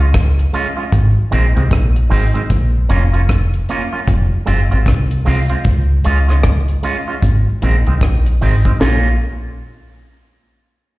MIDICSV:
0, 0, Header, 1, 4, 480
1, 0, Start_track
1, 0, Key_signature, -5, "minor"
1, 0, Tempo, 787402
1, 1523, Time_signature, 4, 2, 24, 8
1, 6695, End_track
2, 0, Start_track
2, 0, Title_t, "Clean electric guitar"
2, 0, Program_c, 0, 27
2, 2, Note_on_c, 0, 56, 51
2, 36, Note_off_c, 0, 56, 0
2, 325, Note_on_c, 0, 56, 82
2, 331, Note_on_c, 0, 61, 84
2, 333, Note_on_c, 0, 65, 88
2, 404, Note_off_c, 0, 56, 0
2, 406, Note_off_c, 0, 61, 0
2, 407, Note_off_c, 0, 65, 0
2, 469, Note_on_c, 0, 65, 67
2, 474, Note_on_c, 0, 61, 61
2, 479, Note_on_c, 0, 56, 48
2, 509, Note_off_c, 0, 65, 0
2, 512, Note_off_c, 0, 61, 0
2, 514, Note_off_c, 0, 56, 0
2, 800, Note_on_c, 0, 51, 85
2, 804, Note_on_c, 0, 56, 95
2, 809, Note_on_c, 0, 60, 95
2, 881, Note_off_c, 0, 51, 0
2, 883, Note_off_c, 0, 56, 0
2, 885, Note_off_c, 0, 60, 0
2, 948, Note_on_c, 0, 60, 58
2, 954, Note_on_c, 0, 56, 51
2, 958, Note_on_c, 0, 51, 50
2, 988, Note_off_c, 0, 60, 0
2, 991, Note_off_c, 0, 56, 0
2, 993, Note_off_c, 0, 51, 0
2, 1279, Note_on_c, 0, 51, 96
2, 1284, Note_on_c, 0, 56, 91
2, 1289, Note_on_c, 0, 60, 96
2, 1360, Note_off_c, 0, 51, 0
2, 1363, Note_off_c, 0, 56, 0
2, 1365, Note_off_c, 0, 60, 0
2, 1429, Note_on_c, 0, 60, 70
2, 1434, Note_on_c, 0, 56, 64
2, 1438, Note_on_c, 0, 51, 51
2, 1468, Note_off_c, 0, 60, 0
2, 1471, Note_off_c, 0, 56, 0
2, 1473, Note_off_c, 0, 51, 0
2, 1762, Note_on_c, 0, 58, 73
2, 1767, Note_on_c, 0, 61, 93
2, 1771, Note_on_c, 0, 65, 84
2, 1841, Note_off_c, 0, 58, 0
2, 1844, Note_off_c, 0, 61, 0
2, 1846, Note_off_c, 0, 65, 0
2, 1912, Note_on_c, 0, 65, 67
2, 1921, Note_on_c, 0, 61, 61
2, 1922, Note_on_c, 0, 58, 56
2, 1950, Note_off_c, 0, 65, 0
2, 1954, Note_off_c, 0, 61, 0
2, 1955, Note_off_c, 0, 58, 0
2, 2251, Note_on_c, 0, 58, 80
2, 2254, Note_on_c, 0, 61, 84
2, 2259, Note_on_c, 0, 65, 95
2, 2325, Note_off_c, 0, 58, 0
2, 2327, Note_off_c, 0, 61, 0
2, 2330, Note_off_c, 0, 65, 0
2, 2393, Note_on_c, 0, 65, 67
2, 2397, Note_on_c, 0, 61, 57
2, 2400, Note_on_c, 0, 58, 52
2, 2430, Note_off_c, 0, 65, 0
2, 2432, Note_off_c, 0, 61, 0
2, 2434, Note_off_c, 0, 58, 0
2, 2717, Note_on_c, 0, 56, 83
2, 2721, Note_on_c, 0, 60, 88
2, 2727, Note_on_c, 0, 65, 91
2, 2799, Note_off_c, 0, 56, 0
2, 2801, Note_off_c, 0, 60, 0
2, 2803, Note_off_c, 0, 65, 0
2, 2873, Note_on_c, 0, 65, 65
2, 2875, Note_on_c, 0, 60, 55
2, 2881, Note_on_c, 0, 56, 47
2, 2910, Note_off_c, 0, 65, 0
2, 2911, Note_off_c, 0, 60, 0
2, 2914, Note_off_c, 0, 56, 0
2, 3200, Note_on_c, 0, 56, 86
2, 3208, Note_on_c, 0, 60, 89
2, 3211, Note_on_c, 0, 65, 90
2, 3280, Note_off_c, 0, 56, 0
2, 3284, Note_off_c, 0, 60, 0
2, 3286, Note_off_c, 0, 65, 0
2, 3351, Note_on_c, 0, 65, 65
2, 3355, Note_on_c, 0, 60, 61
2, 3360, Note_on_c, 0, 56, 55
2, 3389, Note_off_c, 0, 65, 0
2, 3391, Note_off_c, 0, 60, 0
2, 3394, Note_off_c, 0, 56, 0
2, 3684, Note_on_c, 0, 56, 82
2, 3689, Note_on_c, 0, 61, 78
2, 3694, Note_on_c, 0, 65, 84
2, 3763, Note_off_c, 0, 56, 0
2, 3765, Note_off_c, 0, 61, 0
2, 3767, Note_off_c, 0, 65, 0
2, 3830, Note_on_c, 0, 65, 64
2, 3836, Note_on_c, 0, 61, 64
2, 3840, Note_on_c, 0, 56, 55
2, 3869, Note_off_c, 0, 65, 0
2, 3872, Note_off_c, 0, 61, 0
2, 3874, Note_off_c, 0, 56, 0
2, 4162, Note_on_c, 0, 56, 82
2, 4168, Note_on_c, 0, 61, 81
2, 4173, Note_on_c, 0, 65, 86
2, 4242, Note_off_c, 0, 56, 0
2, 4244, Note_off_c, 0, 61, 0
2, 4247, Note_off_c, 0, 65, 0
2, 4315, Note_on_c, 0, 65, 62
2, 4322, Note_on_c, 0, 61, 60
2, 4326, Note_on_c, 0, 56, 52
2, 4351, Note_off_c, 0, 65, 0
2, 4355, Note_off_c, 0, 61, 0
2, 4357, Note_off_c, 0, 56, 0
2, 4645, Note_on_c, 0, 51, 73
2, 4652, Note_on_c, 0, 56, 81
2, 4655, Note_on_c, 0, 60, 85
2, 4723, Note_off_c, 0, 51, 0
2, 4727, Note_off_c, 0, 56, 0
2, 4728, Note_off_c, 0, 60, 0
2, 4797, Note_on_c, 0, 60, 64
2, 4801, Note_on_c, 0, 56, 55
2, 4806, Note_on_c, 0, 51, 54
2, 4833, Note_off_c, 0, 60, 0
2, 4835, Note_off_c, 0, 56, 0
2, 4837, Note_off_c, 0, 51, 0
2, 5127, Note_on_c, 0, 51, 80
2, 5131, Note_on_c, 0, 56, 86
2, 5135, Note_on_c, 0, 60, 91
2, 5205, Note_off_c, 0, 51, 0
2, 5207, Note_off_c, 0, 56, 0
2, 5208, Note_off_c, 0, 60, 0
2, 5272, Note_on_c, 0, 60, 64
2, 5279, Note_on_c, 0, 56, 57
2, 5282, Note_on_c, 0, 51, 53
2, 5311, Note_off_c, 0, 60, 0
2, 5314, Note_off_c, 0, 56, 0
2, 5316, Note_off_c, 0, 51, 0
2, 5365, Note_on_c, 0, 58, 83
2, 5370, Note_on_c, 0, 61, 79
2, 5374, Note_on_c, 0, 65, 94
2, 5532, Note_off_c, 0, 58, 0
2, 5534, Note_off_c, 0, 61, 0
2, 5536, Note_off_c, 0, 65, 0
2, 6695, End_track
3, 0, Start_track
3, 0, Title_t, "Fingered electric bass"
3, 0, Program_c, 1, 33
3, 0, Note_on_c, 1, 37, 86
3, 271, Note_off_c, 1, 37, 0
3, 568, Note_on_c, 1, 32, 102
3, 697, Note_off_c, 1, 32, 0
3, 810, Note_on_c, 1, 34, 93
3, 938, Note_off_c, 1, 34, 0
3, 959, Note_on_c, 1, 36, 82
3, 1037, Note_off_c, 1, 36, 0
3, 1047, Note_on_c, 1, 34, 93
3, 1257, Note_off_c, 1, 34, 0
3, 1289, Note_on_c, 1, 32, 92
3, 1417, Note_off_c, 1, 32, 0
3, 1529, Note_on_c, 1, 34, 94
3, 1738, Note_off_c, 1, 34, 0
3, 1770, Note_on_c, 1, 29, 94
3, 2190, Note_off_c, 1, 29, 0
3, 2486, Note_on_c, 1, 29, 104
3, 2615, Note_off_c, 1, 29, 0
3, 2730, Note_on_c, 1, 30, 90
3, 2857, Note_off_c, 1, 30, 0
3, 2880, Note_on_c, 1, 32, 88
3, 2957, Note_off_c, 1, 32, 0
3, 2966, Note_on_c, 1, 36, 92
3, 3176, Note_off_c, 1, 36, 0
3, 3213, Note_on_c, 1, 36, 83
3, 3339, Note_off_c, 1, 36, 0
3, 3447, Note_on_c, 1, 37, 94
3, 3657, Note_off_c, 1, 37, 0
3, 3692, Note_on_c, 1, 37, 87
3, 4111, Note_off_c, 1, 37, 0
3, 4409, Note_on_c, 1, 32, 101
3, 4537, Note_off_c, 1, 32, 0
3, 4651, Note_on_c, 1, 34, 99
3, 4779, Note_off_c, 1, 34, 0
3, 4800, Note_on_c, 1, 36, 80
3, 4877, Note_off_c, 1, 36, 0
3, 4887, Note_on_c, 1, 34, 87
3, 5098, Note_off_c, 1, 34, 0
3, 5134, Note_on_c, 1, 32, 85
3, 5261, Note_off_c, 1, 32, 0
3, 5374, Note_on_c, 1, 34, 89
3, 5593, Note_off_c, 1, 34, 0
3, 6695, End_track
4, 0, Start_track
4, 0, Title_t, "Drums"
4, 87, Note_on_c, 9, 37, 104
4, 88, Note_on_c, 9, 36, 116
4, 90, Note_on_c, 9, 42, 84
4, 148, Note_off_c, 9, 37, 0
4, 149, Note_off_c, 9, 36, 0
4, 151, Note_off_c, 9, 42, 0
4, 240, Note_on_c, 9, 42, 50
4, 301, Note_off_c, 9, 42, 0
4, 329, Note_on_c, 9, 42, 68
4, 390, Note_off_c, 9, 42, 0
4, 564, Note_on_c, 9, 36, 115
4, 565, Note_on_c, 9, 42, 105
4, 625, Note_off_c, 9, 36, 0
4, 626, Note_off_c, 9, 42, 0
4, 807, Note_on_c, 9, 42, 80
4, 868, Note_off_c, 9, 42, 0
4, 956, Note_on_c, 9, 42, 48
4, 1017, Note_off_c, 9, 42, 0
4, 1044, Note_on_c, 9, 36, 108
4, 1048, Note_on_c, 9, 42, 80
4, 1055, Note_on_c, 9, 37, 105
4, 1105, Note_off_c, 9, 36, 0
4, 1109, Note_off_c, 9, 42, 0
4, 1116, Note_off_c, 9, 37, 0
4, 1196, Note_on_c, 9, 42, 61
4, 1257, Note_off_c, 9, 42, 0
4, 1289, Note_on_c, 9, 46, 66
4, 1350, Note_off_c, 9, 46, 0
4, 1435, Note_on_c, 9, 42, 50
4, 1496, Note_off_c, 9, 42, 0
4, 1526, Note_on_c, 9, 36, 118
4, 1527, Note_on_c, 9, 42, 82
4, 1587, Note_off_c, 9, 36, 0
4, 1588, Note_off_c, 9, 42, 0
4, 1766, Note_on_c, 9, 42, 80
4, 1827, Note_off_c, 9, 42, 0
4, 1914, Note_on_c, 9, 42, 50
4, 1974, Note_off_c, 9, 42, 0
4, 2007, Note_on_c, 9, 36, 112
4, 2007, Note_on_c, 9, 37, 113
4, 2010, Note_on_c, 9, 42, 84
4, 2068, Note_off_c, 9, 36, 0
4, 2068, Note_off_c, 9, 37, 0
4, 2071, Note_off_c, 9, 42, 0
4, 2156, Note_on_c, 9, 42, 49
4, 2217, Note_off_c, 9, 42, 0
4, 2248, Note_on_c, 9, 42, 68
4, 2309, Note_off_c, 9, 42, 0
4, 2484, Note_on_c, 9, 36, 112
4, 2485, Note_on_c, 9, 42, 98
4, 2545, Note_off_c, 9, 36, 0
4, 2546, Note_off_c, 9, 42, 0
4, 2725, Note_on_c, 9, 42, 80
4, 2786, Note_off_c, 9, 42, 0
4, 2876, Note_on_c, 9, 42, 49
4, 2937, Note_off_c, 9, 42, 0
4, 2963, Note_on_c, 9, 36, 112
4, 2968, Note_on_c, 9, 42, 87
4, 2975, Note_on_c, 9, 37, 102
4, 3024, Note_off_c, 9, 36, 0
4, 3029, Note_off_c, 9, 42, 0
4, 3036, Note_off_c, 9, 37, 0
4, 3115, Note_on_c, 9, 42, 56
4, 3176, Note_off_c, 9, 42, 0
4, 3206, Note_on_c, 9, 46, 64
4, 3266, Note_off_c, 9, 46, 0
4, 3349, Note_on_c, 9, 42, 49
4, 3410, Note_off_c, 9, 42, 0
4, 3441, Note_on_c, 9, 42, 82
4, 3444, Note_on_c, 9, 36, 113
4, 3502, Note_off_c, 9, 42, 0
4, 3505, Note_off_c, 9, 36, 0
4, 3684, Note_on_c, 9, 42, 72
4, 3745, Note_off_c, 9, 42, 0
4, 3834, Note_on_c, 9, 42, 51
4, 3842, Note_on_c, 9, 37, 58
4, 3895, Note_off_c, 9, 42, 0
4, 3903, Note_off_c, 9, 37, 0
4, 3922, Note_on_c, 9, 37, 116
4, 3925, Note_on_c, 9, 36, 120
4, 3925, Note_on_c, 9, 42, 83
4, 3983, Note_off_c, 9, 37, 0
4, 3986, Note_off_c, 9, 36, 0
4, 3986, Note_off_c, 9, 42, 0
4, 4074, Note_on_c, 9, 42, 49
4, 4135, Note_off_c, 9, 42, 0
4, 4165, Note_on_c, 9, 42, 67
4, 4226, Note_off_c, 9, 42, 0
4, 4404, Note_on_c, 9, 36, 110
4, 4405, Note_on_c, 9, 42, 99
4, 4465, Note_off_c, 9, 36, 0
4, 4466, Note_off_c, 9, 42, 0
4, 4646, Note_on_c, 9, 42, 78
4, 4707, Note_off_c, 9, 42, 0
4, 4794, Note_on_c, 9, 42, 48
4, 4855, Note_off_c, 9, 42, 0
4, 4884, Note_on_c, 9, 36, 106
4, 4886, Note_on_c, 9, 42, 84
4, 4893, Note_on_c, 9, 37, 100
4, 4945, Note_off_c, 9, 36, 0
4, 4947, Note_off_c, 9, 42, 0
4, 4954, Note_off_c, 9, 37, 0
4, 5036, Note_on_c, 9, 42, 59
4, 5097, Note_off_c, 9, 42, 0
4, 5130, Note_on_c, 9, 46, 63
4, 5191, Note_off_c, 9, 46, 0
4, 5274, Note_on_c, 9, 36, 87
4, 5275, Note_on_c, 9, 42, 46
4, 5335, Note_off_c, 9, 36, 0
4, 5335, Note_off_c, 9, 42, 0
4, 5370, Note_on_c, 9, 38, 99
4, 5431, Note_off_c, 9, 38, 0
4, 6695, End_track
0, 0, End_of_file